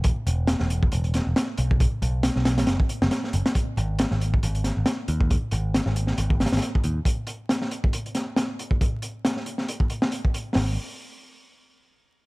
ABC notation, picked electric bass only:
X:1
M:4/4
L:1/16
Q:"Swing 16ths" 1/4=137
K:G#m
V:1 name="Picked electric bass" clef=bass
z2 E,,,2 z E,,,2 z E,,,2 z E,,, z2 B,,,2 | z2 B,,,2 z B,,,3 F,,, z2 F,,, z2 F,,, z | z2 G,,,2 z G,,,2 z G,,,2 z G,,, z2 D,,2 | z2 G,,,2 z G,,,2 z G,,,2 z G,,, z2 D,, z |
z16 | z16 | G,,,2 z12 z2 |]